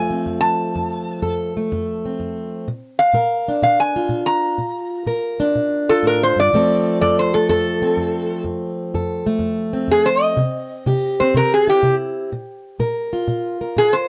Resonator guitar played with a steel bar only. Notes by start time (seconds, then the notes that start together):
Already playing: G#5
0.41 A5
2.99 F5
3.63 F5
3.80 G#5
4.26 A#5
5.89 A4
6.07 A#4
6.23 C5
6.40 D5
7.01 D5
7.19 C5
7.34 A4
7.49 A4
9.91 G#4
10.06 C5
10.22 D#5
11.20 C5
11.37 A#4
11.54 G#4
11.70 G4
13.78 G#4
13.93 C5